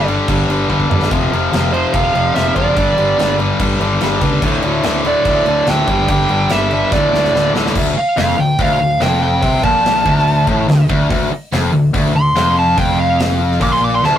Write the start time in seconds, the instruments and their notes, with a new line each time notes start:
Already playing: fingered electric bass G1
0.07 distorted electric guitar G2 D3 G3, crash
0.28 fingered electric bass G1, distorted electric guitar G2 D3 G3, kick, crash
0.49 fingered electric bass G1, distorted electric guitar G2 D3 G3, crash
0.68 fingered electric bass G1, distorted electric guitar G2 D3 G3, kick
0.80 kick
0.89 fingered electric bass G1, distorted electric guitar G2 D3 G3, mid tom
1.02 snare
1.10 fingered electric bass F1, distorted electric guitar F2 C3 F3, kick, crash
1.31 fingered electric bass F1, distorted electric guitar F2 C3 F3, crash
1.52 fingered electric bass F1, distorted electric guitar F2 C3 F3, snare, crash
1.72 distorted electric guitar F2 C3 F3, lead electric guitar C5, crash
1.93 fingered electric bass F1, distorted electric guitar F2 C3 F3, lead electric guitar F5, kick, crash
2.14 fingered electric bass F1, distorted electric guitar F2 C3 F3, crash
2.35 fingered electric bass F1, distorted electric guitar F2 C3 F3, lead electric guitar E5, snare, crash
2.56 fingered electric bass F#1, distorted electric guitar F2 C3 F3, lead electric guitar D5, kick, crash
2.76 fingered electric bass G1, distorted electric guitar G2 D3 G3, kick, crash
2.98 fingered electric bass G1, distorted electric guitar G2 D3 G3, crash
3.18 fingered electric bass G1, distorted electric guitar G2 D3 G3, snare, crash
3.39 distorted electric guitar G2 D3 G3, crash
3.59 fingered electric bass G1, distorted electric guitar G2 D3 G3, kick, crash
3.80 fingered electric bass G1, distorted electric guitar G2 D3 G3, crash
4.01 fingered electric bass G1, distorted electric guitar G2 D3 G3, snare, crash
4.21 fingered electric bass C#2, distorted electric guitar G2 D3 G3, kick, crash
4.42 fingered electric bass D1, distorted electric guitar D2 A2 D3, kick, crash
4.62 fingered electric bass D1, distorted electric guitar D2 A2 D3, crash
4.83 fingered electric bass D1, distorted electric guitar D2 A2 D3, snare, crash
5.05 distorted electric guitar D2 A2 D3, lead electric guitar D5, crash
5.25 fingered electric bass D1, distorted electric guitar D2 A2 D3, kick, crash
5.46 fingered electric bass D1, distorted electric guitar D2 A2 D3, crash
5.67 fingered electric bass D1, distorted electric guitar D2 A2 D3, lead electric guitar G5, snare, crash
5.87 fingered electric bass G1, distorted electric guitar G2 D3 G3, kick, crash
6.08 fingered electric bass G1, distorted electric guitar G2 D3 G3, lead electric guitar G5, kick, crash
6.29 fingered electric bass G1, distorted electric guitar G2 D3 G3, crash
6.49 fingered electric bass G1, distorted electric guitar G2 D3 G3, lead electric guitar E5, snare, crash
6.71 distorted electric guitar G2 D3 G3, crash
6.92 fingered electric bass D1, distorted electric guitar D2 A2 D3, lead electric guitar D5, kick, snare
7.13 fingered electric bass D1, distorted electric guitar D2 A2 D3, snare
7.24 snare
7.34 fingered electric bass D1, distorted electric guitar D2 A2 D3, snare
7.54 fingered electric bass D1, distorted electric guitar D2 A2 D3, snare
7.66 snare
7.75 fingered electric bass D1, distorted electric guitar D2, kick, crash
7.97 lead electric guitar F5, muted distorted electric guitar stroke
8.17 fingered electric bass F1, distorted electric guitar F2, lead electric guitar F5, snare, open hi-hat
8.38 fingered electric bass D1, distorted electric guitar D2, lead electric guitar G5
8.59 fingered electric bass D1, distorted electric guitar D2, lead electric guitar F5, kick, open hi-hat
8.80 fingered electric bass D1, distorted electric guitar D2
9.01 fingered electric bass F1, distorted electric guitar F2, lead electric guitar G5, snare, open hi-hat
9.23 lead electric guitar G5
9.42 fingered electric bass C2, distorted electric guitar C3, kick, open hi-hat
9.63 fingered electric bass A#1, distorted electric guitar A#2, lead electric guitar A5, kick
9.85 snare, open hi-hat
10.06 fingered electric bass D1, distorted electric guitar D2, kick
10.19 snare
10.27 open hi-hat
10.47 fingered electric bass A1, distorted electric guitar A2, kick
10.68 fingered electric bass D1, distorted electric guitar D2, snare, open hi-hat
10.89 fingered electric bass D1, distorted electric guitar D2, kick
11.10 fingered electric bass D1, distorted electric guitar D2, kick, open hi-hat
11.30 muted fingered electric bass stroke, muted distorted electric guitar stroke
11.52 fingered electric bass F1, distorted electric guitar F2, snare, open hi-hat
11.73 fingered electric bass D1, distorted electric guitar D2
11.94 fingered electric bass D1, distorted electric guitar D2, kick, open hi-hat
12.15 fingered electric bass D1, distorted electric guitar D2, lead electric guitar C6
12.35 fingered electric bass F1, distorted electric guitar F2, snare, open hi-hat
12.58 lead electric guitar A5
12.77 fingered electric bass F1, distorted electric guitar F2, lead electric guitar G5, kick, open hi-hat
12.99 lead electric guitar F5
13.20 snare, open hi-hat
13.52 snare
13.61 fingered electric bass A#1, distorted electric guitar A#2, lead electric guitar D6, kick, open hi-hat
13.73 lead electric guitar C6
13.84 lead electric guitar D6
13.95 lead electric guitar C6
14.03 fingered electric bass D1, distorted electric guitar D2, lead electric guitar A5, snare
14.13 high tom